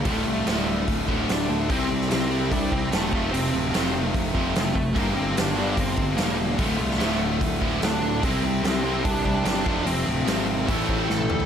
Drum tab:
HH |o---o---o---o---|o---o---o---o---|o---o---o---o---|o---o---o---o---|
SD |----o-------o---|---oo-------o---|----oo------o---|----o-------o---|
T1 |----------------|----------------|----------------|----------------|
T2 |----------------|----------------|----------------|----------------|
FT |----------------|----------------|----------------|----------------|
BD |o-------o-o-----|o-------o-o---o-|--------o-o---o-|o-------o-o-----|

HH |o---o---o---o---|o---o---o---o---|o---o---o-------|
SD |---ooo------o---|----o-------o---|----oo------o---|
T1 |----------------|----------------|-------------o--|
T2 |----------------|----------------|--------------o-|
FT |----------------|----------------|---------------o|
BD |o-------o-o-----|o-------o-o---o-|--------o-o-----|